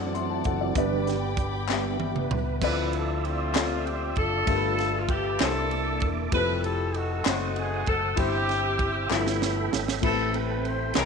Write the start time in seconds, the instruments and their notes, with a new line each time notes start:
Already playing: fingered electric bass F#2, tonewheel organ E3 F#3 C4, upright piano A3 D4 F#4 C5 D5, string section D5 F#5 A5
0.14 upright piano E5 C6, closed hi-hat
0.30 upright piano C5 A5
0.44 fingered electric bass F#1, tonewheel organ E3 F#3 C4, upright piano A4 F#5, kick, closed hi-hat
0.61 upright piano F#4 D5
0.75 fingered electric bass G1, upright piano G2 B3 D4 G4 D5, tonewheel organ D3 G3 B3 B4, string section G5 B5 D6, kick, closed hi-hat
1.07 tonewheel organ G4, snare, closed hi-hat
1.37 tonewheel organ G4, kick, closed hi-hat
1.68 tonewheel organ D3 G3 B3, upright piano B3 D4 G4 E5, snare, clap
2.00 high tom
2.15 tonewheel organ B4, mid tom
2.31 fingered electric bass C#2, mid tom
2.61 fingered electric bass D2, upright piano D3 F3 C4 A4 D5 E5, horn section E4 F4 B4, tonewheel organ D5 E5 E6, kick, crash
2.93 horn section A4, ride
3.25 horn section A3 C4 F4, ride
3.53 upright piano C4 F4 A4 D5 E5, snare, clap, ride
3.87 horn section G4, ride
4.16 fingered electric bass F#1, horn section D4 F4 A4, kick, ride
4.46 fingered electric bass G1, upright piano G2 A3 F4 G4 A#4 E5, tonewheel organ F4 B4 A5, kick, ride
4.56 upright piano B4
4.78 snare, ride
4.96 horn section F4
5.09 horn section G4, kick, ride
5.39 fingered electric bass C2, upright piano C3 A#3 D4 E4 A4 C5, tonewheel organ A#3 E5 D6, horn section D4 E4 A4, snare, clap, ride
5.71 ride
6.00 fingered electric bass E1, kick, ride
6.32 fingered electric bass F1, upright piano F3 G3 C4 E4 A4, horn section E4 G4 B4, tonewheel organ A4 E6, kick, ride
6.64 horn section A4, ride
6.94 horn section A3 D#4 F#4, ride
7.24 fingered electric bass F#1, upright piano A3 C4 D#4 F#4 C5, tonewheel organ C5 F#5 D#6, snare, clap, ride
7.56 horn section G#4, ride
7.86 fingered electric bass F#1, horn section A4, kick, ride
8.16 fingered electric bass G1, upright piano G2 E4 G4 C5, horn section C4 E4 G4, tonewheel organ E5 G5 E6, kick, ride
8.49 snare, ride
8.79 kick, ride
9.09 fingered electric bass G1, upright piano G2 F3 A3 E4 G4 B4, horn section A3 B3 E4, tonewheel organ A4 E5 G5 B5, snare, clap
9.27 snare
9.42 snare
9.73 fingered electric bass G#1, snare
9.88 snare
10.01 fingered electric bass A1, upright piano A2 A3 B3 E4 G4 B4, tonewheel organ C4 G5, horn section C4 E4 A4, kick, crash
10.08 upright piano C4
10.34 horn section B4, ride
10.65 horn section C5, ride
10.94 fingered electric bass C2, upright piano C3 E3 G#3 C4 G#4 D#5, horn section D#4 E4 A#4, tonewheel organ A#4 D#5 G#5 C6, snare, clap, ride